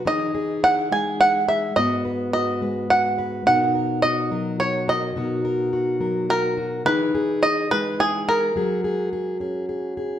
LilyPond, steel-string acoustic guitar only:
\new Staff \with { instrumentName = "Steel-string acoustic guitar" } { \time 3/4 \key b \major \tempo 4 = 106 << { <dis' e' gis'>8 gis'8 e'8 gis'8 e'8 gis'8 | <b fis' b'>8 b'8 fis'8 b'8 fis'8 b'8 | <dis' fis' ais'>8 ais'8 fis'8 ais'8 fis'8 ais'8 | <dis' fis' ais'>8 ais'8 fis'8 ais'8 fis'8 fis'8 |
<dis' e' gis'>8 gis'8 e'8 gis'8 e'8 gis'8 | <fis' gis'>8 gis'8 gis'8 gis'8 gis'8 gis'8 | } \\ { e4. gis4. | gis,4. gis4. | b,4. fis4. | b,4. fis4. |
e4. gis4. | fis4. cis'4. | } >> }